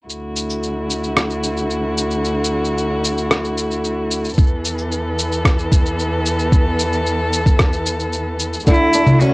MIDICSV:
0, 0, Header, 1, 5, 480
1, 0, Start_track
1, 0, Key_signature, 2, "major"
1, 0, Tempo, 535714
1, 85, Time_signature, 4, 2, 24, 8
1, 8366, End_track
2, 0, Start_track
2, 0, Title_t, "Cello"
2, 0, Program_c, 0, 42
2, 7779, Note_on_c, 0, 64, 105
2, 8252, Note_on_c, 0, 61, 97
2, 8265, Note_off_c, 0, 64, 0
2, 8366, Note_off_c, 0, 61, 0
2, 8366, End_track
3, 0, Start_track
3, 0, Title_t, "Steel-string acoustic guitar"
3, 0, Program_c, 1, 25
3, 7771, Note_on_c, 1, 50, 77
3, 7996, Note_off_c, 1, 50, 0
3, 8013, Note_on_c, 1, 62, 64
3, 8237, Note_off_c, 1, 62, 0
3, 8254, Note_on_c, 1, 66, 92
3, 8366, Note_off_c, 1, 66, 0
3, 8366, End_track
4, 0, Start_track
4, 0, Title_t, "String quartet"
4, 0, Program_c, 2, 48
4, 77, Note_on_c, 2, 64, 59
4, 78, Note_on_c, 2, 38, 67
4, 79, Note_on_c, 2, 66, 73
4, 83, Note_on_c, 2, 50, 59
4, 3885, Note_off_c, 2, 64, 0
4, 3886, Note_off_c, 2, 38, 0
4, 3886, Note_off_c, 2, 66, 0
4, 3889, Note_off_c, 2, 50, 0
4, 3926, Note_on_c, 2, 69, 77
4, 3928, Note_on_c, 2, 52, 65
4, 3929, Note_on_c, 2, 40, 70
4, 3933, Note_on_c, 2, 59, 69
4, 7730, Note_off_c, 2, 69, 0
4, 7731, Note_off_c, 2, 40, 0
4, 7731, Note_off_c, 2, 52, 0
4, 7733, Note_off_c, 2, 59, 0
4, 7764, Note_on_c, 2, 50, 68
4, 7767, Note_on_c, 2, 38, 70
4, 7768, Note_on_c, 2, 64, 67
4, 7769, Note_on_c, 2, 66, 86
4, 8366, Note_off_c, 2, 38, 0
4, 8366, Note_off_c, 2, 50, 0
4, 8366, Note_off_c, 2, 64, 0
4, 8366, Note_off_c, 2, 66, 0
4, 8366, End_track
5, 0, Start_track
5, 0, Title_t, "Drums"
5, 87, Note_on_c, 9, 69, 35
5, 176, Note_off_c, 9, 69, 0
5, 323, Note_on_c, 9, 69, 57
5, 413, Note_off_c, 9, 69, 0
5, 446, Note_on_c, 9, 69, 27
5, 536, Note_off_c, 9, 69, 0
5, 565, Note_on_c, 9, 69, 35
5, 655, Note_off_c, 9, 69, 0
5, 807, Note_on_c, 9, 69, 60
5, 897, Note_off_c, 9, 69, 0
5, 928, Note_on_c, 9, 69, 26
5, 1017, Note_off_c, 9, 69, 0
5, 1045, Note_on_c, 9, 37, 65
5, 1047, Note_on_c, 9, 69, 37
5, 1135, Note_off_c, 9, 37, 0
5, 1136, Note_off_c, 9, 69, 0
5, 1166, Note_on_c, 9, 69, 25
5, 1255, Note_off_c, 9, 69, 0
5, 1284, Note_on_c, 9, 69, 59
5, 1374, Note_off_c, 9, 69, 0
5, 1406, Note_on_c, 9, 69, 26
5, 1496, Note_off_c, 9, 69, 0
5, 1525, Note_on_c, 9, 69, 40
5, 1615, Note_off_c, 9, 69, 0
5, 1770, Note_on_c, 9, 69, 67
5, 1859, Note_off_c, 9, 69, 0
5, 1888, Note_on_c, 9, 69, 29
5, 1977, Note_off_c, 9, 69, 0
5, 2012, Note_on_c, 9, 69, 35
5, 2101, Note_off_c, 9, 69, 0
5, 2189, Note_on_c, 9, 69, 68
5, 2279, Note_off_c, 9, 69, 0
5, 2371, Note_on_c, 9, 69, 28
5, 2461, Note_off_c, 9, 69, 0
5, 2489, Note_on_c, 9, 69, 39
5, 2579, Note_off_c, 9, 69, 0
5, 2726, Note_on_c, 9, 69, 68
5, 2816, Note_off_c, 9, 69, 0
5, 2845, Note_on_c, 9, 69, 30
5, 2934, Note_off_c, 9, 69, 0
5, 2964, Note_on_c, 9, 37, 74
5, 2966, Note_on_c, 9, 69, 41
5, 3054, Note_off_c, 9, 37, 0
5, 3056, Note_off_c, 9, 69, 0
5, 3086, Note_on_c, 9, 69, 26
5, 3176, Note_off_c, 9, 69, 0
5, 3203, Note_on_c, 9, 69, 66
5, 3293, Note_off_c, 9, 69, 0
5, 3324, Note_on_c, 9, 69, 27
5, 3414, Note_off_c, 9, 69, 0
5, 3443, Note_on_c, 9, 69, 40
5, 3533, Note_off_c, 9, 69, 0
5, 3682, Note_on_c, 9, 69, 70
5, 3772, Note_off_c, 9, 69, 0
5, 3804, Note_on_c, 9, 69, 30
5, 3844, Note_off_c, 9, 69, 0
5, 3844, Note_on_c, 9, 69, 24
5, 3884, Note_off_c, 9, 69, 0
5, 3884, Note_on_c, 9, 69, 19
5, 3922, Note_off_c, 9, 69, 0
5, 3922, Note_on_c, 9, 69, 37
5, 3924, Note_on_c, 9, 36, 103
5, 4003, Note_off_c, 9, 69, 0
5, 4003, Note_on_c, 9, 69, 11
5, 4014, Note_off_c, 9, 36, 0
5, 4093, Note_off_c, 9, 69, 0
5, 4164, Note_on_c, 9, 69, 69
5, 4254, Note_off_c, 9, 69, 0
5, 4285, Note_on_c, 9, 69, 27
5, 4375, Note_off_c, 9, 69, 0
5, 4406, Note_on_c, 9, 69, 38
5, 4495, Note_off_c, 9, 69, 0
5, 4647, Note_on_c, 9, 69, 72
5, 4737, Note_off_c, 9, 69, 0
5, 4767, Note_on_c, 9, 69, 32
5, 4856, Note_off_c, 9, 69, 0
5, 4884, Note_on_c, 9, 36, 113
5, 4886, Note_on_c, 9, 37, 69
5, 4888, Note_on_c, 9, 69, 41
5, 4973, Note_off_c, 9, 36, 0
5, 4976, Note_off_c, 9, 37, 0
5, 4978, Note_off_c, 9, 69, 0
5, 5006, Note_on_c, 9, 69, 25
5, 5096, Note_off_c, 9, 69, 0
5, 5124, Note_on_c, 9, 36, 104
5, 5126, Note_on_c, 9, 69, 73
5, 5214, Note_off_c, 9, 36, 0
5, 5215, Note_off_c, 9, 69, 0
5, 5250, Note_on_c, 9, 69, 31
5, 5339, Note_off_c, 9, 69, 0
5, 5368, Note_on_c, 9, 69, 40
5, 5458, Note_off_c, 9, 69, 0
5, 5605, Note_on_c, 9, 69, 74
5, 5695, Note_off_c, 9, 69, 0
5, 5725, Note_on_c, 9, 69, 33
5, 5815, Note_off_c, 9, 69, 0
5, 5844, Note_on_c, 9, 36, 104
5, 5845, Note_on_c, 9, 69, 39
5, 5933, Note_off_c, 9, 36, 0
5, 5934, Note_off_c, 9, 69, 0
5, 6086, Note_on_c, 9, 69, 68
5, 6175, Note_off_c, 9, 69, 0
5, 6206, Note_on_c, 9, 69, 29
5, 6296, Note_off_c, 9, 69, 0
5, 6327, Note_on_c, 9, 69, 40
5, 6417, Note_off_c, 9, 69, 0
5, 6566, Note_on_c, 9, 69, 74
5, 6656, Note_off_c, 9, 69, 0
5, 6685, Note_on_c, 9, 36, 87
5, 6688, Note_on_c, 9, 69, 30
5, 6775, Note_off_c, 9, 36, 0
5, 6777, Note_off_c, 9, 69, 0
5, 6801, Note_on_c, 9, 37, 69
5, 6803, Note_on_c, 9, 69, 40
5, 6806, Note_on_c, 9, 36, 104
5, 6891, Note_off_c, 9, 37, 0
5, 6893, Note_off_c, 9, 69, 0
5, 6896, Note_off_c, 9, 36, 0
5, 6924, Note_on_c, 9, 69, 27
5, 7013, Note_off_c, 9, 69, 0
5, 7042, Note_on_c, 9, 69, 71
5, 7132, Note_off_c, 9, 69, 0
5, 7164, Note_on_c, 9, 69, 31
5, 7254, Note_off_c, 9, 69, 0
5, 7281, Note_on_c, 9, 69, 42
5, 7371, Note_off_c, 9, 69, 0
5, 7521, Note_on_c, 9, 69, 75
5, 7611, Note_off_c, 9, 69, 0
5, 7644, Note_on_c, 9, 69, 31
5, 7703, Note_off_c, 9, 69, 0
5, 7703, Note_on_c, 9, 69, 26
5, 7764, Note_off_c, 9, 69, 0
5, 7764, Note_on_c, 9, 69, 39
5, 7768, Note_on_c, 9, 36, 94
5, 7827, Note_off_c, 9, 69, 0
5, 7827, Note_on_c, 9, 69, 16
5, 7858, Note_off_c, 9, 36, 0
5, 7917, Note_off_c, 9, 69, 0
5, 8002, Note_on_c, 9, 69, 69
5, 8092, Note_off_c, 9, 69, 0
5, 8123, Note_on_c, 9, 64, 69
5, 8125, Note_on_c, 9, 69, 28
5, 8213, Note_off_c, 9, 64, 0
5, 8214, Note_off_c, 9, 69, 0
5, 8245, Note_on_c, 9, 69, 39
5, 8335, Note_off_c, 9, 69, 0
5, 8366, End_track
0, 0, End_of_file